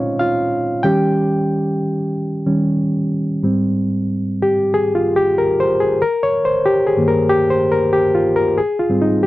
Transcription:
0, 0, Header, 1, 2, 480
1, 0, Start_track
1, 0, Key_signature, -4, "major"
1, 0, Tempo, 644468
1, 635, Time_signature, 4, 2, 24, 8
1, 6903, End_track
2, 0, Start_track
2, 0, Title_t, "Reed electric piano"
2, 0, Program_c, 0, 4
2, 0, Control_c, 0, 64, 127
2, 0, Note_on_c, 0, 46, 53
2, 0, Note_on_c, 0, 56, 44
2, 0, Note_on_c, 0, 60, 62
2, 0, Note_on_c, 0, 61, 57
2, 0, Note_on_c, 0, 63, 66
2, 0, Note_on_c, 0, 65, 69
2, 0, Note_on_c, 0, 72, 80
2, 0, Note_on_c, 0, 73, 84
2, 0, Note_on_c, 0, 75, 83
2, 0, Note_on_c, 0, 77, 84
2, 126, Note_off_c, 0, 61, 0
2, 145, Note_off_c, 0, 77, 0
2, 145, Note_on_c, 0, 77, 88
2, 156, Note_off_c, 0, 65, 0
2, 156, Note_on_c, 0, 65, 67
2, 168, Note_off_c, 0, 73, 0
2, 601, Note_off_c, 0, 46, 0
2, 603, Note_off_c, 0, 56, 0
2, 606, Note_off_c, 0, 65, 0
2, 619, Note_on_c, 0, 79, 90
2, 625, Note_on_c, 0, 51, 54
2, 626, Note_on_c, 0, 55, 49
2, 632, Note_on_c, 0, 61, 57
2, 632, Note_on_c, 0, 67, 71
2, 644, Control_c, 0, 64, 0
2, 645, Note_off_c, 0, 77, 0
2, 646, Note_off_c, 0, 63, 0
2, 647, Note_off_c, 0, 72, 0
2, 649, Note_off_c, 0, 60, 0
2, 650, Note_off_c, 0, 75, 0
2, 761, Control_c, 0, 64, 127
2, 1321, Note_off_c, 0, 51, 0
2, 1322, Note_off_c, 0, 55, 0
2, 1325, Note_off_c, 0, 61, 0
2, 1833, Note_on_c, 0, 51, 47
2, 1835, Note_on_c, 0, 55, 42
2, 1837, Note_on_c, 0, 61, 49
2, 2040, Note_off_c, 0, 79, 0
2, 2046, Note_off_c, 0, 67, 0
2, 2051, Note_off_c, 0, 51, 0
2, 2052, Note_off_c, 0, 55, 0
2, 2053, Note_off_c, 0, 61, 0
2, 2554, Note_on_c, 0, 44, 52
2, 2558, Note_on_c, 0, 55, 46
2, 2565, Note_on_c, 0, 60, 53
2, 2568, Control_c, 0, 64, 0
2, 2686, Control_c, 0, 64, 127
2, 2875, Note_off_c, 0, 44, 0
2, 2878, Note_off_c, 0, 55, 0
2, 2881, Note_off_c, 0, 60, 0
2, 3295, Note_on_c, 0, 67, 80
2, 3400, Note_off_c, 0, 67, 0
2, 3530, Note_on_c, 0, 68, 87
2, 3674, Note_off_c, 0, 68, 0
2, 3687, Note_on_c, 0, 65, 81
2, 3846, Note_on_c, 0, 67, 83
2, 3848, Note_off_c, 0, 65, 0
2, 4007, Note_off_c, 0, 67, 0
2, 4008, Note_on_c, 0, 70, 85
2, 4168, Note_off_c, 0, 70, 0
2, 4172, Note_on_c, 0, 72, 88
2, 4323, Note_on_c, 0, 68, 81
2, 4330, Note_off_c, 0, 72, 0
2, 4483, Note_on_c, 0, 70, 92
2, 4486, Note_off_c, 0, 68, 0
2, 4488, Control_c, 0, 64, 0
2, 4638, Control_c, 0, 64, 127
2, 4641, Note_on_c, 0, 73, 95
2, 4646, Note_off_c, 0, 70, 0
2, 4713, Note_off_c, 0, 73, 0
2, 4804, Note_on_c, 0, 72, 84
2, 4958, Note_on_c, 0, 67, 92
2, 4966, Note_off_c, 0, 72, 0
2, 5030, Note_off_c, 0, 67, 0
2, 5115, Note_on_c, 0, 68, 90
2, 5191, Note_on_c, 0, 43, 55
2, 5197, Note_on_c, 0, 51, 48
2, 5199, Note_on_c, 0, 58, 60
2, 5266, Note_off_c, 0, 68, 0
2, 5271, Note_on_c, 0, 70, 86
2, 5433, Note_on_c, 0, 67, 88
2, 5440, Note_off_c, 0, 70, 0
2, 5514, Note_off_c, 0, 43, 0
2, 5517, Note_off_c, 0, 51, 0
2, 5518, Note_off_c, 0, 58, 0
2, 5588, Note_on_c, 0, 72, 87
2, 5601, Note_off_c, 0, 67, 0
2, 5742, Note_off_c, 0, 72, 0
2, 5747, Note_on_c, 0, 70, 82
2, 5905, Note_on_c, 0, 67, 82
2, 5918, Note_off_c, 0, 70, 0
2, 6068, Note_on_c, 0, 65, 80
2, 6077, Note_off_c, 0, 67, 0
2, 6221, Note_off_c, 0, 65, 0
2, 6227, Note_on_c, 0, 70, 84
2, 6387, Note_on_c, 0, 68, 89
2, 6397, Note_off_c, 0, 70, 0
2, 6409, Control_c, 0, 64, 0
2, 6547, Control_c, 0, 64, 127
2, 6549, Note_on_c, 0, 65, 79
2, 6557, Note_off_c, 0, 68, 0
2, 6624, Note_on_c, 0, 44, 55
2, 6626, Note_on_c, 0, 55, 52
2, 6631, Note_on_c, 0, 60, 59
2, 6702, Note_off_c, 0, 65, 0
2, 6715, Note_on_c, 0, 63, 76
2, 6865, Note_off_c, 0, 63, 0
2, 6874, Note_on_c, 0, 67, 87
2, 6903, Note_off_c, 0, 44, 0
2, 6903, Note_off_c, 0, 55, 0
2, 6903, Note_off_c, 0, 60, 0
2, 6903, Note_off_c, 0, 67, 0
2, 6903, End_track
0, 0, End_of_file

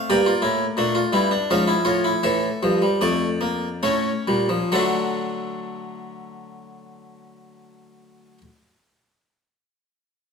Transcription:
0, 0, Header, 1, 2, 480
1, 0, Start_track
1, 0, Tempo, 700935
1, 61, Time_signature, 3, 2, 24, 8
1, 1022, Tempo, 738916
1, 1502, Tempo, 798935
1, 2462, Tempo, 907716
1, 5896, End_track
2, 0, Start_track
2, 0, Title_t, "Harpsichord"
2, 0, Program_c, 0, 6
2, 67, Note_on_c, 0, 43, 90
2, 67, Note_on_c, 0, 67, 99
2, 67, Note_on_c, 0, 74, 90
2, 69, Note_on_c, 0, 58, 86
2, 178, Note_off_c, 0, 67, 0
2, 180, Note_on_c, 0, 65, 94
2, 211, Note_off_c, 0, 43, 0
2, 288, Note_on_c, 0, 64, 100
2, 291, Note_on_c, 0, 45, 90
2, 293, Note_off_c, 0, 65, 0
2, 438, Note_off_c, 0, 64, 0
2, 441, Note_off_c, 0, 45, 0
2, 524, Note_off_c, 0, 58, 0
2, 528, Note_on_c, 0, 46, 82
2, 532, Note_on_c, 0, 62, 97
2, 534, Note_on_c, 0, 57, 82
2, 650, Note_off_c, 0, 62, 0
2, 650, Note_on_c, 0, 65, 91
2, 680, Note_off_c, 0, 46, 0
2, 684, Note_off_c, 0, 57, 0
2, 770, Note_off_c, 0, 65, 0
2, 771, Note_on_c, 0, 43, 79
2, 773, Note_on_c, 0, 55, 79
2, 773, Note_on_c, 0, 64, 95
2, 894, Note_off_c, 0, 64, 0
2, 899, Note_on_c, 0, 62, 86
2, 925, Note_off_c, 0, 43, 0
2, 927, Note_off_c, 0, 55, 0
2, 998, Note_off_c, 0, 74, 0
2, 1019, Note_off_c, 0, 62, 0
2, 1030, Note_on_c, 0, 53, 76
2, 1033, Note_on_c, 0, 61, 85
2, 1033, Note_on_c, 0, 77, 79
2, 1034, Note_on_c, 0, 44, 81
2, 1141, Note_on_c, 0, 64, 101
2, 1143, Note_off_c, 0, 61, 0
2, 1177, Note_off_c, 0, 77, 0
2, 1178, Note_off_c, 0, 44, 0
2, 1253, Note_on_c, 0, 73, 76
2, 1254, Note_on_c, 0, 65, 88
2, 1255, Note_on_c, 0, 45, 77
2, 1257, Note_off_c, 0, 64, 0
2, 1374, Note_off_c, 0, 65, 0
2, 1380, Note_on_c, 0, 64, 79
2, 1406, Note_off_c, 0, 73, 0
2, 1407, Note_off_c, 0, 45, 0
2, 1492, Note_off_c, 0, 53, 0
2, 1499, Note_off_c, 0, 64, 0
2, 1503, Note_on_c, 0, 45, 83
2, 1503, Note_on_c, 0, 52, 76
2, 1505, Note_on_c, 0, 69, 77
2, 1505, Note_on_c, 0, 76, 86
2, 1645, Note_off_c, 0, 45, 0
2, 1646, Note_off_c, 0, 52, 0
2, 1739, Note_on_c, 0, 53, 79
2, 1741, Note_on_c, 0, 43, 78
2, 1849, Note_off_c, 0, 53, 0
2, 1856, Note_on_c, 0, 55, 70
2, 1884, Note_off_c, 0, 43, 0
2, 1956, Note_off_c, 0, 76, 0
2, 1968, Note_off_c, 0, 55, 0
2, 1970, Note_on_c, 0, 41, 79
2, 1972, Note_on_c, 0, 74, 88
2, 1974, Note_on_c, 0, 57, 83
2, 2123, Note_off_c, 0, 57, 0
2, 2209, Note_on_c, 0, 58, 77
2, 2366, Note_off_c, 0, 58, 0
2, 2439, Note_off_c, 0, 69, 0
2, 2449, Note_off_c, 0, 41, 0
2, 2450, Note_off_c, 0, 74, 0
2, 2461, Note_on_c, 0, 73, 72
2, 2462, Note_on_c, 0, 45, 75
2, 2462, Note_on_c, 0, 57, 74
2, 2463, Note_on_c, 0, 61, 72
2, 2605, Note_off_c, 0, 45, 0
2, 2605, Note_off_c, 0, 57, 0
2, 2698, Note_on_c, 0, 46, 74
2, 2698, Note_on_c, 0, 55, 70
2, 2810, Note_off_c, 0, 55, 0
2, 2813, Note_on_c, 0, 53, 75
2, 2844, Note_off_c, 0, 46, 0
2, 2916, Note_off_c, 0, 61, 0
2, 2916, Note_off_c, 0, 73, 0
2, 2928, Note_off_c, 0, 53, 0
2, 2933, Note_on_c, 0, 50, 70
2, 2933, Note_on_c, 0, 62, 73
2, 2936, Note_on_c, 0, 54, 75
2, 2936, Note_on_c, 0, 69, 68
2, 2950, Note_on_c, 0, 66, 69
2, 2951, Note_on_c, 0, 57, 62
2, 4868, Note_off_c, 0, 50, 0
2, 4868, Note_off_c, 0, 62, 0
2, 4871, Note_off_c, 0, 54, 0
2, 4871, Note_off_c, 0, 69, 0
2, 4885, Note_off_c, 0, 66, 0
2, 4887, Note_off_c, 0, 57, 0
2, 5896, End_track
0, 0, End_of_file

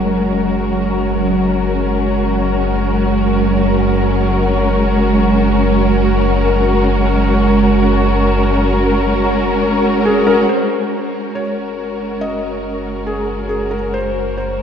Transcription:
0, 0, Header, 1, 5, 480
1, 0, Start_track
1, 0, Tempo, 869565
1, 40, Time_signature, 4, 2, 24, 8
1, 8072, End_track
2, 0, Start_track
2, 0, Title_t, "Felt piano"
2, 0, Program_c, 0, 0
2, 5550, Note_on_c, 0, 68, 67
2, 5667, Note_on_c, 0, 70, 76
2, 5679, Note_off_c, 0, 68, 0
2, 5791, Note_on_c, 0, 72, 88
2, 5798, Note_off_c, 0, 70, 0
2, 6266, Note_on_c, 0, 73, 88
2, 6290, Note_off_c, 0, 72, 0
2, 6741, Note_on_c, 0, 75, 93
2, 6768, Note_off_c, 0, 73, 0
2, 7212, Note_on_c, 0, 68, 77
2, 7245, Note_off_c, 0, 75, 0
2, 7438, Note_off_c, 0, 68, 0
2, 7446, Note_on_c, 0, 68, 76
2, 7567, Note_on_c, 0, 70, 80
2, 7587, Note_off_c, 0, 68, 0
2, 7694, Note_on_c, 0, 72, 84
2, 7708, Note_off_c, 0, 70, 0
2, 7926, Note_off_c, 0, 72, 0
2, 7935, Note_on_c, 0, 72, 79
2, 8072, Note_off_c, 0, 72, 0
2, 8072, End_track
3, 0, Start_track
3, 0, Title_t, "String section"
3, 0, Program_c, 1, 48
3, 0, Note_on_c, 1, 56, 66
3, 0, Note_on_c, 1, 61, 67
3, 0, Note_on_c, 1, 66, 60
3, 0, Note_on_c, 1, 70, 70
3, 8072, Note_off_c, 1, 56, 0
3, 8072, Note_off_c, 1, 61, 0
3, 8072, Note_off_c, 1, 66, 0
3, 8072, Note_off_c, 1, 70, 0
3, 8072, End_track
4, 0, Start_track
4, 0, Title_t, "Synth drone"
4, 0, Program_c, 2, 95
4, 0, Note_on_c, 2, 54, 72
4, 5848, Note_off_c, 2, 54, 0
4, 8072, End_track
5, 0, Start_track
5, 0, Title_t, "Synth drone"
5, 0, Program_c, 3, 95
5, 0, Note_on_c, 3, 30, 74
5, 5778, Note_off_c, 3, 30, 0
5, 5801, Note_on_c, 3, 30, 86
5, 8072, Note_off_c, 3, 30, 0
5, 8072, End_track
0, 0, End_of_file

